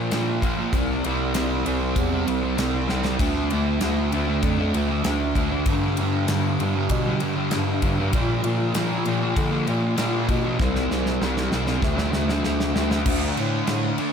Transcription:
Already playing: A#2 A#3
0.00 F3
0.11 A#2 F3 A#3, snare, ride
0.42 A#2 F3 A#3, kick, ride
0.57 F3 A#3
0.73 C2 C3 G3 C4, kick, ride
1.04 C2 C3 G3 C4, ride
1.34 C2 C3 G3 C4, snare, ride
1.64 C2 C3 G3 C4, ride
1.80 G3 C4
1.96 E2, kick, ride
2.10 G3 C4
2.25 C2 C3 G3 C4, ride
2.41 G3 C4
2.57 C2 C3 G3 C4, snare, ride
2.87 C2 C3 G3 C4, snare
3.03 G3 C4, snare
3.19 D2 D3 A3 D4, kick, ride, splash
3.50 D2 D3 A3 D4, ride
3.81 D2 D3 A3 D4, snare, ride
4.11 D2 D3 A3 D4, ride
4.27 A3 D4
4.43 F2, kick, ride
4.58 A3 D4
4.74 D2 D3 A3 D4, ride
4.88 A3 D4
5.04 D2 D3 A3 D4, snare, ride
5.35 D2 D3 A3 D4, kick, ride
5.51 A3 D4
5.66 G2 D3 G3, kick, ride
5.97 G2 D3 G3, ride
6.28 G2 D3 G3, snare, ride
6.59 G2 D3 G3, ride
6.75 D3 G3
6.89 B2, kick, ride
7.05 D3 G3
7.20 G2 D3 G3, ride
7.36 D3 G3
7.51 G2 D3 G3, snare, ride
7.82 G2 D3 G3, kick, ride
7.98 D3 G3
8.12 A#2 F3 A#3, kick, ride
8.43 A#2 F3 A#3, ride
8.74 A#2 F3 A#3, snare, ride
9.05 A#2 F3 A#3, ride
9.21 F3 A#3
9.36 D3, kick, ride
9.51 F3 A#3
9.66 A#2 F3 A#3, ride
9.82 F3 A#3
9.97 A#2 F3 A#3, snare, ride
10.28 A#2 B2 F3 A#3, kick, ride
10.44 F3 A#3
10.59 C2 C3 G3 C4, kick, snare
10.76 snare
10.89 C2 C3 G3 C4, snare
11.06 snare
11.20 C2 C3 G3 C4, snare
11.37 snare
11.51 C2 C3 G3 C4, snare
11.66 G3 C4, snare
11.81 D2 D3 A3 D4, kick, snare
11.96 A3 D4, snare
12.11 D2 D3 A3 D4, snare
12.28 A3 D4, snare
12.43 D2 D3 A3 D4, snare
12.60 snare
12.74 D2 D3 A3 D4, snare
12.90 A3 D4, snare
13.06 D2 D3 A3 D4, kick, crash
13.36 A2 A3 D4, crash
13.67 A2, snare, crash
13.98 A3 D4, crash

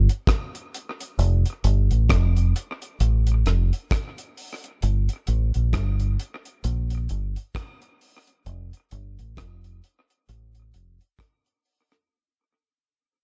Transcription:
0.09 closed hi-hat
0.27 kick, cross-stick, closed hi-hat
0.55 closed hi-hat
0.74 closed hi-hat
1.00 closed hi-hat
1.19 F1, closed hi-hat
1.46 closed hi-hat
1.64 G1, closed hi-hat
1.91 A1, closed hi-hat
2.09 F1, kick, cross-stick, closed hi-hat
2.36 closed hi-hat
2.56 closed hi-hat
2.82 closed hi-hat
3.00 A1, closed hi-hat
3.27 closed hi-hat
3.46 F1, cross-stick, closed hi-hat
3.73 closed hi-hat
3.91 kick, cross-stick, closed hi-hat
4.18 closed hi-hat
4.37 open hi-hat
4.64 closed hi-hat
4.82 G1, closed hi-hat
5.09 closed hi-hat
5.27 A1, closed hi-hat
5.54 A#1, closed hi-hat
5.73 G1, kick, cross-stick, closed hi-hat
6.00 closed hi-hat
6.19 closed hi-hat
6.45 closed hi-hat
6.64 A#1, closed hi-hat
6.90 closed hi-hat
7.09 G1, closed hi-hat
7.36 closed hi-hat
7.55 kick, cross-stick, closed hi-hat
7.82 closed hi-hat
8.01 open hi-hat
8.27 closed hi-hat
8.46 F1, closed hi-hat
8.73 closed hi-hat
8.91 G1, closed hi-hat
9.19 A1, closed hi-hat
9.37 F1, kick, cross-stick, closed hi-hat
9.64 closed hi-hat
9.84 closed hi-hat
10.10 closed hi-hat
10.29 A1, closed hi-hat
10.55 closed hi-hat
10.74 F1, closed hi-hat
11.01 closed hi-hat
11.19 kick, cross-stick, closed hi-hat
11.46 closed hi-hat
11.65 open hi-hat
11.92 cross-stick, closed hi-hat

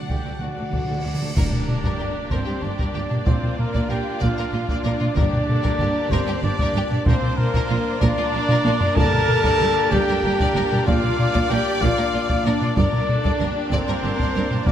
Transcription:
Already playing: D4 D5 F#5, cymbal swell
0.02 D3
0.09 D2 D3 A3 F#4 G4 A4 D5 G5, taiko
0.18 D3
0.25 D2 D3 A3 F#4 A4
0.32 D3
0.39 D2 D3 A3 D4 F#4 F#5
0.47 D3
0.54 D3 A3 F#4 A4
0.58 D2
0.62 D3
0.70 D2 D3 A3 F#4 A4 D5, taiko
0.78 D3
0.84 D3 A3 F#4
0.89 D2 D3 F#4 A4
0.99 D3
1.05 D2 D3 A3 D4 F#4 D5
1.15 D3
1.21 D2 D3 A3 F#4 A4
1.35 G1 G2 A#2 A#3 D4 G4 A#4 D5, taiko, impact
1.52 taiko low-mid
1.68 taiko low-mid
1.84 G2 A#4, taiko
1.99 G1 G2 G4
2.31 G1 G2 C4 G4 A#4 C5, taiko
2.47 G2 G4
2.61 G1 G2 D4 D5
2.79 G2 A#4, taiko
2.95 G1 G2 G4
3.10 G2 D4, taiko low-mid
3.26 A#1 A#2 C4 F4 C5 D5, taiko
3.43 taiko low-mid
3.58 A#3 A#4, taiko low-mid
3.75 A#2 D5, taiko
3.90 A#1 A#2 G4 A#4 G5
4.20 A#1 A#2 F4 D5 F5, taiko
4.38 A#2 A#4
4.52 A#1 A#2 F4
4.69 A#2 D5, taiko
4.84 A#1 A#2 D4 A#4 D5
4.99 A#2 F4, taiko low-mid
5.15 G1 G2 A#2 D4 G4 A#4 D5, taiko
5.33 taiko low-mid
5.48 A4, taiko low-mid
5.63 G2 A#4, taiko
5.80 G1 G2 G4 A#4
6.10 G1 G2 C4 A#4 C5 D5, taiko
6.28 G2 G4
6.43 G1 G2 D4 D5
6.59 G2 A#4, taiko
6.75 G1 G2 G4
6.91 G2 D4, taiko low-mid
7.06 A#1 A#2 A#3 C4 D4 F4 A#4 C5 D5, taiko
7.22 taiko low-mid
7.37 A#3 A#4, taiko low-mid
7.54 A#2 A#4, taiko
7.70 A#1 A#2 F4
7.99 A#1 A#2 D4 A#4 D5, taiko
8.18 A#2 F4
8.33 A#1 A#2 D4
8.49 A#2 A#4, taiko low-mid
8.65 A#1 A#2 F4, taiko high
8.81 A#2 D4, taiko low
8.96 G1 G2 A#2 D4 G4 A4 A#4 D5 A5, taiko
9.13 taiko low-mid
9.28 taiko low-mid
9.44 G2 D5, taiko
9.61 G1 G2 A#4
9.90 G1 G2 G4 A#4 D5 G5, taiko
10.09 G2 A#4
10.24 G1 G2 G4
10.39 G2 D5, taiko
10.55 G1 G2 A#4
10.71 G2 G4, taiko low-mid
10.86 A#1 A#2 F4 D5 F5, taiko
11.04 taiko low-mid
11.19 taiko low-mid
11.33 A#2 D5, taiko
11.50 A#1 A#2 G4 A#4 G5
11.80 A#1 A#2 F4 D5 F5, taiko
11.86 F4
11.97 A#2 A#4
12.13 A#1 A#2 F4
12.28 A#2 D5, taiko
12.44 A#1 A#2 D4 A#4 D5
12.61 A#2 F4, taiko low-mid
12.75 G1 G2 A#2 A#3 D4 A#4 D5, taiko
12.79 D5
12.93 taiko low-mid
13.09 A4, taiko low-mid
13.25 G2 D5, taiko
13.40 G1 G2 G4 A#4
13.71 G1 G2 C4 A#4 C5 D5, taiko
13.87 G2 A#4
14.04 G1 G2 G4
14.19 G2 D5, taiko
14.34 G1 G2 A#4
14.51 G2 G4, taiko low-mid
14.66 A#1 A#2 A#3 A#4 D5, taiko

